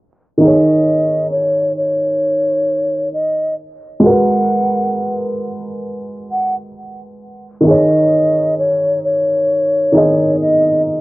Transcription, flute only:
0.41 1.27 D#5 medium
1.31 1.72 C#5 medium
1.77 3.09 C#5 medium
3.14 3.54 D#5 medium
4.05 5.17 F#5 medium
6.32 6.55 F#5 medium
7.68 8.55 D#5 loud
8.59 9.00 C#5 medium
9.05 10.36 C#5 medium
10.41 10.82 D#5 medium

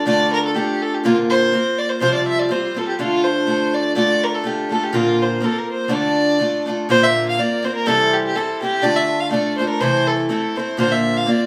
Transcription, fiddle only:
0.07 0.31 D5 loud
0.33 0.43 A#4 medium
0.45 0.57 A4 medium
0.55 0.83 G4 medium
0.82 0.96 A4 medium
0.94 1.04 G4 medium
1.05 1.16 F4 loud
1.30 1.80 C5 loud
1.78 1.91 D5 loud
1.89 2.00 C5 medium
2.01 2.13 C5 loud
2.14 2.27 D5 medium
2.27 2.41 E5 loud
2.39 2.52 D5 medium
2.51 2.79 C5 medium
2.78 2.87 A4 medium
2.88 2.98 G4 medium
2.99 3.25 F4 loud
3.24 3.76 C5 medium
3.74 3.96 D5 loud
3.96 4.25 D5 loud
4.23 4.36 A#4 medium
4.34 4.48 A4 medium
4.46 4.76 G4 medium
4.74 4.85 A4 medium
4.83 4.96 G4 medium
4.95 5.23 F4 loud
5.22 5.45 C5 medium
5.44 5.60 A4 medium
5.58 5.70 A#4 medium
5.72 5.94 C5 medium
5.93 6.67 D5 loud
6.91 7.05 C5 loud
7.04 7.27 E5 loud
7.29 7.41 F5 medium
7.39 7.66 D5 medium
7.65 7.75 C5 medium
7.75 7.88 A#4 medium
7.87 8.15 A4 loud
8.13 8.24 G4 medium
8.25 8.37 G4 medium
8.36 8.61 A4 medium
8.61 8.84 G4 loud
8.83 8.97 D5 loud
8.96 9.21 E5 medium
9.20 9.30 F5 medium
9.31 9.56 D5 medium
9.58 9.68 C5 medium
9.69 9.82 A#4 medium
9.80 10.08 C5 loud
10.07 10.29 A4 medium
10.30 10.58 A4 medium
10.57 10.79 C5 medium
10.79 10.94 C5 loud
10.92 11.18 E5 medium
11.17 11.30 F5 medium
11.29 11.46 D5 medium

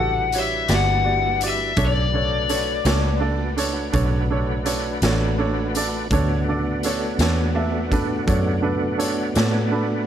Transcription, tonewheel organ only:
0.00 1.73 G3 medium
0.00 1.73 D4 medium
0.00 1.73 E4 medium
0.00 1.73 B4 medium
1.79 6.08 A3 medium
1.79 6.08 D4 medium
1.79 6.08 F#4 medium
1.79 6.08 B4 medium
6.10 10.07 A3 medium
6.10 10.07 B3 medium
6.10 10.07 D4 medium
6.10 10.07 F#4 medium

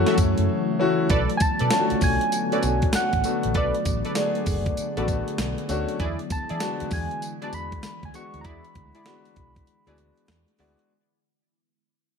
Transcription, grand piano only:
0.00 0.79 A3 loud
0.00 0.80 C#4 medium
0.00 0.80 E4 medium
0.00 0.52 F#4 loud
0.00 1.11 G#4 loud
0.79 1.03 A3 medium
0.79 1.03 C#4 medium
0.79 1.04 E4 medium
0.79 1.04 F#4 loud
1.71 2.27 A3 medium
1.71 2.27 C#4 medium
1.71 2.27 D4 medium
1.71 1.80 F4 medium
1.79 2.30 F#4 medium
2.52 3.03 A3 medium
2.52 3.03 C#4 medium
2.52 3.03 D4 medium
2.52 3.03 F#4 medium
3.24 3.89 A3 medium
3.24 3.89 B3 medium
3.24 3.89 D4 medium
3.24 3.89 F#4 medium
4.16 4.71 A3 medium
4.16 4.71 B3 medium
4.16 4.72 D4 medium
4.16 4.72 G#4 medium
4.97 5.48 A3 medium
4.97 5.48 B3 medium
4.97 5.48 D4 medium
4.97 5.48 F#4 medium
5.69 6.00 A3 loud
5.69 6.00 C#4 medium
5.69 6.00 D4 medium
5.69 6.00 F#4 loud
6.61 7.16 G#3 medium
6.61 7.17 B3 medium
6.61 7.17 D4 medium
6.61 7.17 F#4 medium
7.42 7.92 G#3 medium
7.42 7.92 B3 medium
7.42 7.93 D4 medium
7.42 7.93 F#4 medium
8.14 8.78 G#3 medium
8.14 8.78 B3 medium
8.14 8.79 D4 medium
8.14 8.79 F#4 medium
9.06 9.61 G#3 medium
9.06 9.61 B3 medium
9.06 9.62 D4 medium
9.06 9.62 F#4 medium
9.87 10.37 G#3 medium
9.87 10.37 B3 medium
9.87 10.38 D4 medium
9.87 10.38 F#4 medium
10.59 10.90 G#3 loud
10.59 10.90 B3 medium
10.59 10.90 D4 medium
10.59 10.90 F#4 loud

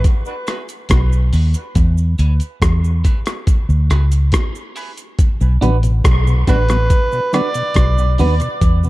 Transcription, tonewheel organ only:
2.19 2.27 E3 medium
2.19 2.27 G#3 medium
2.19 2.27 B3 medium
3.05 3.13 E3 medium
3.05 3.13 G#3 medium
3.05 3.13 B3 medium
3.70 3.78 B2 medium
4.76 4.84 E3 medium
4.76 4.85 G#3 medium
4.76 4.85 B3 medium
4.99 5.06 E2 medium
4.99 5.06 B2 medium
5.41 5.49 B2 medium
5.62 5.70 D3 medium
5.62 5.70 F#3 medium
5.62 5.70 B3 medium
5.84 5.92 B2 medium
6.27 6.35 B2 medium
6.48 6.56 D3 medium
6.48 6.56 F#3 medium
6.48 6.56 B3 medium
6.69 6.77 F#3 medium
6.69 6.78 B3 medium
7.13 7.20 B2 medium
7.33 7.41 D3 medium
7.33 7.41 F#3 medium
7.33 7.42 B3 medium
7.55 7.63 B2 medium
7.98 8.06 B2 medium
8.19 8.27 D3 medium
8.19 8.27 F#3 medium
8.19 8.27 B3 medium
8.41 8.49 B2 medium
8.83 8.89 E2 medium
8.83 8.89 B2 medium

